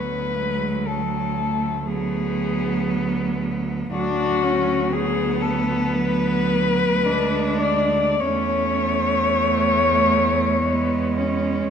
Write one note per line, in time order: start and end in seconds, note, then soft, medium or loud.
0.00 3.88 D2 medium
0.00 1.82 F#3 medium
0.00 0.39 B3 medium
0.00 0.88 B4 loud
0.38 0.88 G#3 medium
0.87 1.38 F#3 medium
0.87 1.87 A4 medium
1.36 1.89 A3 medium
1.86 3.88 F#3 medium
1.86 3.92 B3 medium
1.86 3.42 G#4 medium
3.91 8.22 D2 medium
3.91 5.90 F#3 medium
3.91 4.44 D4 loud
3.91 4.94 F#4 loud
4.42 4.94 C#4 medium
4.92 7.06 B3 loud
4.92 5.43 G#4 loud
5.42 5.95 A4 loud
5.94 7.06 F#3 medium
5.94 7.61 B4 loud
7.04 8.21 G#3 medium
7.04 8.21 D4 medium
7.62 8.22 D5 loud
8.20 11.70 E2 medium
8.20 10.62 A3 medium
8.20 9.26 C#4 medium
8.20 11.70 C#5 loud
9.40 10.62 A3 medium
10.60 11.70 G#3 medium
10.60 11.20 B3 medium
11.18 11.70 C#4 medium